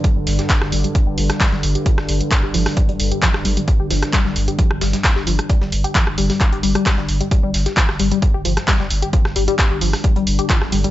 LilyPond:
<<
  \new Staff \with { instrumentName = "Synth arpeggio sound" } { \clef bass \time 4/4 \key c \dorian \tempo 4 = 132 g16 g16 r16 g'16 f16 r16 g16 g16 r16 g'16 f16 r16 g16 g16 r16 g'16 | f16 r16 g16 g16 r16 g'16 f16 r16 g16 g16 r16 g'16 f16 r16 g16 g16 | r16 g'16 f16 r16 g16 g16 r16 g'16 f16 r16 g16 g16 r16 g'16 f16 r16 | g16 g16 r16 g'16 f16 r16 g16 g16 r16 g'16 g16 g16 g16 g16 r16 g16 |
g16 g16 r16 g'16 f16 r16 g16 g16 r16 g'16 f16 r16 g16 g16 r16 g'16 | f16 r16 g16 g16 r16 g'16 f16 r16 g16 g16 r16 g'16 f16 r16 g16 g16 | }
  \new Staff \with { instrumentName = "Ambient pad" } { \clef bass \time 4/4 \key c \dorian <g, d>1~ | <g, d>1~ | <g, d>1~ | <g, d>1 |
<g, d>1~ | <g, d>1 | }
  \new Staff \with { instrumentName = "Sub bass" } { \clef bass \time 4/4 \key c \dorian r16 g,,16 g,,16 r8 g,,16 g,,16 r8 g,,16 g,,16 r8 g,,16 g,,16 r16 | r16 g,,16 g,,16 r8 g,,16 g,,16 r8 g,,16 g,,16 r8 g,,16 g,,16 r16 | r16 g,,16 g,,16 r8 g,,16 g,,16 r8 g,,16 g,,16 r8 g,,16 g,,16 r16 | r16 g,,16 g,,16 r8 g,,16 g,,16 r8 g,,16 g,,16 r8 g,,16 g,,16 r16 |
r16 g,,16 g,,16 r8 g,,16 g,,16 r8 g,,16 g,,16 r8 g,,16 g,,16 r16 | r16 g,,16 g,,16 r8 g,,16 g,,16 r8 g,,16 g,,16 r8 g,,16 g,,16 r16 | }
  \new DrumStaff \with { instrumentName = "Drums" } \drummode { \time 4/4 <hh bd>8 <hh hho sn>16 <hh sn>16 <hc hh bd sn>16 <ss sn>16 <hh hho>16 hh16 <hh bd>8 <hh hho>16 <hh ss sn>16 <hc hh hho bd sn>16 sn16 <hh hho>16 hh16 | <hh bd>16 <ss sn>16 <hh hho>16 hh16 <hc hh bd sn>8 <hh hho>16 <hho ss sn>16 <hh bd>16 hh16 <hh hho>16 hh16 <hc hh bd sn>16 <ss sn>16 <hh hho>16 hh16 | <hh bd>8 <hh hho sn>16 <hh ss sn>16 <hc hh bd sn>16 sn16 <hh hho>16 hh16 <hh bd>16 ss16 <hh hho sn>16 <hh sn>16 <hc hh hho bd sn>16 sn16 <hh hho>16 <hh ss>16 | <hh bd>16 sn16 <hh hho>16 hh16 <hc hh bd sn>16 ss16 <hh hho>16 <hho sn>16 <hc hh bd>16 hh16 <hh hho>16 <hh ss>16 <hc hh bd sn>16 sn16 <hh hho>16 hh16 |
<hh bd>8 <hh hho sn>16 <hh sn>16 <hc hh bd sn>16 <ss sn>16 <hh hho>16 hh16 <hh bd>8 <hh hho>16 <hh ss sn>16 <hc hh hho bd sn>16 sn16 <hh hho>16 hh16 | <hh bd>16 <ss sn>16 <hh hho>16 hh16 <hc hh bd sn>8 <hh hho>16 <hho ss sn>16 <hh bd>16 hh16 <hh hho>16 hh16 <hc hh bd sn>16 <ss sn>16 <hh hho>16 hh16 | }
>>